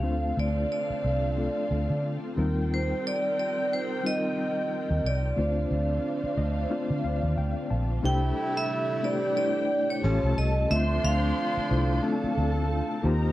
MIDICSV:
0, 0, Header, 1, 8, 480
1, 0, Start_track
1, 0, Tempo, 667408
1, 22, Time_signature, 4, 2, 24, 8
1, 9581, End_track
2, 0, Start_track
2, 0, Title_t, "Vibraphone"
2, 0, Program_c, 0, 11
2, 0, Note_on_c, 0, 77, 91
2, 244, Note_off_c, 0, 77, 0
2, 284, Note_on_c, 0, 74, 74
2, 497, Note_off_c, 0, 74, 0
2, 517, Note_on_c, 0, 74, 72
2, 1441, Note_off_c, 0, 74, 0
2, 1969, Note_on_c, 0, 72, 79
2, 2180, Note_off_c, 0, 72, 0
2, 2207, Note_on_c, 0, 74, 94
2, 2432, Note_off_c, 0, 74, 0
2, 2441, Note_on_c, 0, 74, 85
2, 2679, Note_off_c, 0, 74, 0
2, 2685, Note_on_c, 0, 72, 80
2, 2921, Note_off_c, 0, 72, 0
2, 2923, Note_on_c, 0, 75, 102
2, 3642, Note_on_c, 0, 74, 84
2, 3654, Note_off_c, 0, 75, 0
2, 5523, Note_off_c, 0, 74, 0
2, 5793, Note_on_c, 0, 79, 100
2, 6166, Note_on_c, 0, 76, 94
2, 6177, Note_off_c, 0, 79, 0
2, 6504, Note_on_c, 0, 74, 78
2, 6514, Note_off_c, 0, 76, 0
2, 6730, Note_off_c, 0, 74, 0
2, 6739, Note_on_c, 0, 74, 88
2, 7092, Note_off_c, 0, 74, 0
2, 7123, Note_on_c, 0, 73, 74
2, 7466, Note_on_c, 0, 75, 80
2, 7472, Note_off_c, 0, 73, 0
2, 7686, Note_off_c, 0, 75, 0
2, 7702, Note_on_c, 0, 76, 98
2, 7944, Note_on_c, 0, 77, 94
2, 7948, Note_off_c, 0, 76, 0
2, 9352, Note_off_c, 0, 77, 0
2, 9581, End_track
3, 0, Start_track
3, 0, Title_t, "String section"
3, 0, Program_c, 1, 48
3, 23, Note_on_c, 1, 60, 74
3, 23, Note_on_c, 1, 77, 84
3, 24, Note_on_c, 1, 69, 69
3, 1674, Note_off_c, 1, 60, 0
3, 1674, Note_off_c, 1, 77, 0
3, 1675, Note_off_c, 1, 69, 0
3, 1699, Note_on_c, 1, 79, 96
3, 1700, Note_on_c, 1, 60, 91
3, 1701, Note_on_c, 1, 70, 83
3, 3832, Note_off_c, 1, 79, 0
3, 3833, Note_off_c, 1, 60, 0
3, 3833, Note_off_c, 1, 70, 0
3, 3859, Note_on_c, 1, 77, 77
3, 3860, Note_on_c, 1, 62, 74
3, 3861, Note_on_c, 1, 72, 68
3, 5751, Note_off_c, 1, 77, 0
3, 5752, Note_off_c, 1, 62, 0
3, 5752, Note_off_c, 1, 72, 0
3, 5781, Note_on_c, 1, 64, 69
3, 5782, Note_on_c, 1, 76, 77
3, 6486, Note_off_c, 1, 64, 0
3, 6487, Note_off_c, 1, 76, 0
3, 6498, Note_on_c, 1, 67, 77
3, 6499, Note_on_c, 1, 79, 86
3, 7204, Note_off_c, 1, 67, 0
3, 7205, Note_off_c, 1, 79, 0
3, 7215, Note_on_c, 1, 69, 82
3, 7215, Note_on_c, 1, 81, 82
3, 7688, Note_off_c, 1, 69, 0
3, 7688, Note_off_c, 1, 81, 0
3, 7695, Note_on_c, 1, 84, 89
3, 7697, Note_on_c, 1, 72, 75
3, 8637, Note_off_c, 1, 84, 0
3, 8638, Note_off_c, 1, 72, 0
3, 8655, Note_on_c, 1, 69, 85
3, 8656, Note_on_c, 1, 81, 83
3, 9362, Note_off_c, 1, 69, 0
3, 9362, Note_off_c, 1, 81, 0
3, 9380, Note_on_c, 1, 70, 96
3, 9381, Note_on_c, 1, 82, 99
3, 9581, Note_off_c, 1, 70, 0
3, 9581, Note_off_c, 1, 82, 0
3, 9581, End_track
4, 0, Start_track
4, 0, Title_t, "Reed electric piano"
4, 0, Program_c, 2, 4
4, 0, Control_c, 2, 64, 127
4, 18, Note_on_c, 2, 57, 67
4, 22, Note_on_c, 2, 62, 63
4, 25, Note_on_c, 2, 60, 58
4, 27, Note_on_c, 2, 65, 61
4, 30, Note_on_c, 2, 72, 75
4, 32, Control_c, 2, 64, 0
4, 144, Control_c, 2, 64, 127
4, 826, Note_off_c, 2, 57, 0
4, 828, Note_off_c, 2, 62, 0
4, 829, Note_off_c, 2, 60, 0
4, 830, Note_off_c, 2, 65, 0
4, 832, Note_off_c, 2, 72, 0
4, 981, Note_on_c, 2, 57, 62
4, 985, Note_on_c, 2, 62, 62
4, 987, Note_on_c, 2, 60, 61
4, 991, Note_on_c, 2, 65, 55
4, 994, Note_on_c, 2, 69, 66
4, 1697, Note_off_c, 2, 60, 0
4, 1700, Note_on_c, 2, 55, 85
4, 1701, Note_off_c, 2, 65, 0
4, 1702, Note_off_c, 2, 57, 0
4, 1704, Note_off_c, 2, 62, 0
4, 1705, Note_on_c, 2, 60, 77
4, 1708, Note_off_c, 2, 69, 0
4, 1709, Note_on_c, 2, 63, 77
4, 1710, Note_on_c, 2, 65, 71
4, 1712, Control_c, 2, 64, 0
4, 1716, Note_on_c, 2, 70, 85
4, 1827, Control_c, 2, 64, 127
4, 2507, Note_off_c, 2, 55, 0
4, 2510, Note_off_c, 2, 60, 0
4, 2512, Note_off_c, 2, 63, 0
4, 2512, Note_off_c, 2, 65, 0
4, 2515, Note_off_c, 2, 70, 0
4, 2901, Note_on_c, 2, 55, 64
4, 2907, Note_on_c, 2, 60, 64
4, 2908, Note_on_c, 2, 63, 63
4, 2911, Note_on_c, 2, 65, 61
4, 2916, Note_on_c, 2, 70, 71
4, 3707, Note_off_c, 2, 55, 0
4, 3710, Note_off_c, 2, 60, 0
4, 3711, Note_off_c, 2, 63, 0
4, 3713, Note_off_c, 2, 65, 0
4, 3715, Note_off_c, 2, 70, 0
4, 3859, Note_on_c, 2, 57, 66
4, 3864, Note_on_c, 2, 60, 61
4, 3867, Note_on_c, 2, 62, 62
4, 3870, Note_on_c, 2, 65, 65
4, 3873, Control_c, 2, 64, 0
4, 3874, Note_on_c, 2, 72, 77
4, 4006, Control_c, 2, 64, 127
4, 4584, Note_on_c, 2, 75, 64
4, 4666, Note_off_c, 2, 57, 0
4, 4669, Note_off_c, 2, 60, 0
4, 4670, Note_off_c, 2, 62, 0
4, 4672, Note_off_c, 2, 65, 0
4, 4674, Note_off_c, 2, 72, 0
4, 4807, Note_off_c, 2, 75, 0
4, 4819, Note_on_c, 2, 57, 76
4, 4822, Note_on_c, 2, 60, 68
4, 4824, Note_on_c, 2, 77, 60
4, 4825, Note_on_c, 2, 62, 67
4, 4827, Note_on_c, 2, 65, 69
4, 4831, Note_on_c, 2, 72, 87
4, 5046, Note_off_c, 2, 77, 0
4, 5065, Note_on_c, 2, 77, 63
4, 5287, Note_off_c, 2, 77, 0
4, 5306, Note_on_c, 2, 79, 65
4, 5527, Note_off_c, 2, 79, 0
4, 5541, Note_on_c, 2, 81, 61
4, 5626, Note_off_c, 2, 57, 0
4, 5627, Note_off_c, 2, 60, 0
4, 5629, Note_off_c, 2, 62, 0
4, 5630, Note_off_c, 2, 65, 0
4, 5632, Note_off_c, 2, 72, 0
4, 5765, Note_off_c, 2, 81, 0
4, 5774, Note_on_c, 2, 57, 67
4, 5778, Note_on_c, 2, 62, 64
4, 5780, Note_on_c, 2, 64, 64
4, 5786, Note_on_c, 2, 67, 62
4, 5788, Note_on_c, 2, 72, 77
4, 5791, Control_c, 2, 64, 0
4, 5897, Control_c, 2, 64, 127
4, 6391, Note_off_c, 2, 57, 0
4, 6393, Note_off_c, 2, 62, 0
4, 6394, Note_off_c, 2, 64, 0
4, 6397, Note_off_c, 2, 67, 0
4, 6398, Note_off_c, 2, 72, 0
4, 6495, Note_on_c, 2, 57, 61
4, 6498, Note_on_c, 2, 62, 57
4, 6501, Note_on_c, 2, 64, 54
4, 6507, Note_on_c, 2, 67, 59
4, 6507, Note_on_c, 2, 72, 68
4, 6703, Note_off_c, 2, 57, 0
4, 6704, Note_off_c, 2, 62, 0
4, 6706, Note_off_c, 2, 64, 0
4, 6709, Note_off_c, 2, 67, 0
4, 6709, Note_off_c, 2, 72, 0
4, 6735, Note_on_c, 2, 57, 65
4, 6740, Note_on_c, 2, 62, 62
4, 6746, Note_on_c, 2, 64, 62
4, 6748, Note_on_c, 2, 67, 61
4, 6749, Note_on_c, 2, 72, 76
4, 7209, Note_off_c, 2, 57, 0
4, 7217, Note_on_c, 2, 57, 77
4, 7219, Note_off_c, 2, 67, 0
4, 7220, Note_off_c, 2, 62, 0
4, 7221, Note_on_c, 2, 61, 67
4, 7223, Note_off_c, 2, 64, 0
4, 7225, Note_off_c, 2, 72, 0
4, 7226, Note_on_c, 2, 65, 62
4, 7228, Note_on_c, 2, 67, 64
4, 7229, Control_c, 2, 64, 0
4, 7231, Note_on_c, 2, 73, 82
4, 7369, Control_c, 2, 64, 127
4, 7629, Note_off_c, 2, 57, 0
4, 7630, Note_off_c, 2, 61, 0
4, 7633, Note_off_c, 2, 65, 0
4, 7634, Note_off_c, 2, 67, 0
4, 7636, Note_off_c, 2, 73, 0
4, 7695, Note_on_c, 2, 57, 71
4, 7701, Note_on_c, 2, 62, 66
4, 7702, Note_on_c, 2, 60, 64
4, 7708, Note_on_c, 2, 65, 62
4, 7710, Control_c, 2, 64, 0
4, 7711, Note_on_c, 2, 72, 77
4, 7841, Control_c, 2, 64, 127
4, 8311, Note_off_c, 2, 57, 0
4, 8314, Note_off_c, 2, 60, 0
4, 8314, Note_off_c, 2, 62, 0
4, 8317, Note_off_c, 2, 65, 0
4, 8319, Note_off_c, 2, 72, 0
4, 8414, Note_on_c, 2, 57, 62
4, 8417, Note_on_c, 2, 62, 54
4, 8421, Note_on_c, 2, 64, 56
4, 8424, Note_on_c, 2, 65, 56
4, 8426, Note_on_c, 2, 72, 68
4, 8621, Note_off_c, 2, 57, 0
4, 8623, Note_off_c, 2, 62, 0
4, 8625, Note_off_c, 2, 64, 0
4, 8627, Note_off_c, 2, 65, 0
4, 8628, Note_off_c, 2, 72, 0
4, 8652, Note_on_c, 2, 57, 88
4, 8655, Note_on_c, 2, 62, 72
4, 8658, Note_on_c, 2, 60, 76
4, 8663, Note_on_c, 2, 65, 77
4, 8664, Note_on_c, 2, 74, 91
4, 9370, Note_off_c, 2, 65, 0
4, 9372, Note_on_c, 2, 58, 85
4, 9375, Note_off_c, 2, 57, 0
4, 9375, Note_on_c, 2, 63, 74
4, 9376, Note_off_c, 2, 62, 0
4, 9378, Note_off_c, 2, 60, 0
4, 9379, Note_on_c, 2, 65, 76
4, 9381, Note_off_c, 2, 74, 0
4, 9383, Note_on_c, 2, 67, 77
4, 9385, Note_on_c, 2, 72, 99
4, 9387, Control_c, 2, 64, 0
4, 9514, Control_c, 2, 64, 127
4, 9581, Note_off_c, 2, 58, 0
4, 9581, Note_off_c, 2, 63, 0
4, 9581, Note_off_c, 2, 65, 0
4, 9581, Note_off_c, 2, 67, 0
4, 9581, Note_off_c, 2, 72, 0
4, 9581, End_track
5, 0, Start_track
5, 0, Title_t, "String machine"
5, 0, Program_c, 3, 50
5, 23, Note_on_c, 3, 50, 72
5, 24, Note_on_c, 3, 65, 83
5, 25, Note_on_c, 3, 60, 68
5, 25, Note_on_c, 3, 62, 71
5, 1686, Note_off_c, 3, 50, 0
5, 1687, Note_off_c, 3, 62, 0
5, 1708, Note_on_c, 3, 51, 79
5, 1709, Note_on_c, 3, 67, 73
5, 3844, Note_off_c, 3, 51, 0
5, 3844, Note_off_c, 3, 67, 0
5, 3867, Note_on_c, 3, 50, 76
5, 3867, Note_on_c, 3, 57, 68
5, 5754, Note_off_c, 3, 60, 0
5, 5754, Note_off_c, 3, 65, 0
5, 5765, Note_off_c, 3, 50, 0
5, 5765, Note_off_c, 3, 57, 0
5, 5784, Note_on_c, 3, 62, 72
5, 5785, Note_on_c, 3, 57, 70
5, 5787, Note_on_c, 3, 64, 88
5, 5788, Note_on_c, 3, 48, 82
5, 7207, Note_off_c, 3, 62, 0
5, 7209, Note_off_c, 3, 48, 0
5, 7209, Note_off_c, 3, 64, 0
5, 7228, Note_on_c, 3, 61, 81
5, 7229, Note_on_c, 3, 55, 71
5, 7682, Note_off_c, 3, 57, 0
5, 7699, Note_off_c, 3, 61, 0
5, 7700, Note_off_c, 3, 55, 0
5, 7708, Note_on_c, 3, 60, 77
5, 7709, Note_on_c, 3, 50, 80
5, 7710, Note_on_c, 3, 62, 72
5, 7711, Note_on_c, 3, 65, 91
5, 9366, Note_off_c, 3, 50, 0
5, 9367, Note_off_c, 3, 62, 0
5, 9367, Note_off_c, 3, 65, 0
5, 9378, Note_on_c, 3, 65, 68
5, 9383, Note_on_c, 3, 67, 82
5, 9384, Note_on_c, 3, 63, 75
5, 9581, Note_off_c, 3, 60, 0
5, 9581, Note_off_c, 3, 63, 0
5, 9581, Note_off_c, 3, 65, 0
5, 9581, Note_off_c, 3, 67, 0
5, 9581, End_track
6, 0, Start_track
6, 0, Title_t, "Horn section"
6, 0, Program_c, 4, 61
6, 5782, Note_on_c, 4, 55, 68
6, 5782, Note_on_c, 4, 64, 76
6, 5783, Note_on_c, 4, 57, 70
6, 6957, Note_off_c, 4, 55, 0
6, 6957, Note_off_c, 4, 57, 0
6, 6957, Note_off_c, 4, 64, 0
6, 7219, Note_on_c, 4, 53, 64
6, 7219, Note_on_c, 4, 65, 65
6, 7221, Note_on_c, 4, 61, 62
6, 7455, Note_off_c, 4, 53, 0
6, 7455, Note_off_c, 4, 65, 0
6, 7456, Note_off_c, 4, 61, 0
6, 7700, Note_on_c, 4, 57, 65
6, 7702, Note_on_c, 4, 53, 76
6, 7702, Note_on_c, 4, 62, 82
6, 9110, Note_off_c, 4, 57, 0
6, 9111, Note_off_c, 4, 53, 0
6, 9111, Note_off_c, 4, 62, 0
6, 9380, Note_on_c, 4, 58, 71
6, 9380, Note_on_c, 4, 60, 75
6, 9381, Note_on_c, 4, 63, 84
6, 9581, Note_off_c, 4, 58, 0
6, 9581, Note_off_c, 4, 60, 0
6, 9581, Note_off_c, 4, 63, 0
6, 9581, End_track
7, 0, Start_track
7, 0, Title_t, "Fingered electric bass"
7, 0, Program_c, 5, 33
7, 29, Note_on_c, 5, 38, 102
7, 222, Note_off_c, 5, 38, 0
7, 268, Note_on_c, 5, 38, 83
7, 462, Note_off_c, 5, 38, 0
7, 751, Note_on_c, 5, 36, 75
7, 1057, Note_off_c, 5, 36, 0
7, 1228, Note_on_c, 5, 38, 78
7, 1339, Note_off_c, 5, 38, 0
7, 1367, Note_on_c, 5, 50, 88
7, 1561, Note_off_c, 5, 50, 0
7, 1710, Note_on_c, 5, 39, 88
7, 2099, Note_off_c, 5, 39, 0
7, 3528, Note_on_c, 5, 39, 80
7, 3608, Note_off_c, 5, 39, 0
7, 3627, Note_on_c, 5, 36, 81
7, 3821, Note_off_c, 5, 36, 0
7, 3866, Note_on_c, 5, 38, 103
7, 4061, Note_off_c, 5, 38, 0
7, 4105, Note_on_c, 5, 38, 98
7, 4300, Note_off_c, 5, 38, 0
7, 4585, Note_on_c, 5, 38, 78
7, 4780, Note_off_c, 5, 38, 0
7, 4964, Note_on_c, 5, 50, 82
7, 5045, Note_off_c, 5, 50, 0
7, 5064, Note_on_c, 5, 38, 71
7, 5177, Note_off_c, 5, 38, 0
7, 5202, Note_on_c, 5, 39, 74
7, 5284, Note_off_c, 5, 39, 0
7, 5303, Note_on_c, 5, 38, 86
7, 5416, Note_off_c, 5, 38, 0
7, 5544, Note_on_c, 5, 34, 69
7, 5739, Note_off_c, 5, 34, 0
7, 5782, Note_on_c, 5, 36, 96
7, 5977, Note_off_c, 5, 36, 0
7, 7221, Note_on_c, 5, 33, 92
7, 7334, Note_off_c, 5, 33, 0
7, 7361, Note_on_c, 5, 36, 90
7, 7442, Note_off_c, 5, 36, 0
7, 7462, Note_on_c, 5, 36, 80
7, 7657, Note_off_c, 5, 36, 0
7, 7701, Note_on_c, 5, 38, 105
7, 7896, Note_off_c, 5, 38, 0
7, 7940, Note_on_c, 5, 38, 89
7, 8135, Note_off_c, 5, 38, 0
7, 8421, Note_on_c, 5, 36, 89
7, 8616, Note_off_c, 5, 36, 0
7, 8900, Note_on_c, 5, 38, 81
7, 9209, Note_off_c, 5, 38, 0
7, 9379, Note_on_c, 5, 39, 91
7, 9581, Note_off_c, 5, 39, 0
7, 9581, End_track
8, 0, Start_track
8, 0, Title_t, "Muted fingered electric bass strokes"
8, 648, Note_on_c, 9, 29, 39
8, 720, Note_off_c, 9, 29, 0
8, 4486, Note_on_c, 9, 29, 41
8, 4558, Note_off_c, 9, 29, 0
8, 8323, Note_on_c, 9, 29, 45
8, 8395, Note_off_c, 9, 29, 0
8, 8801, Note_on_c, 9, 29, 47
8, 8873, Note_off_c, 9, 29, 0
8, 9581, End_track
0, 0, End_of_file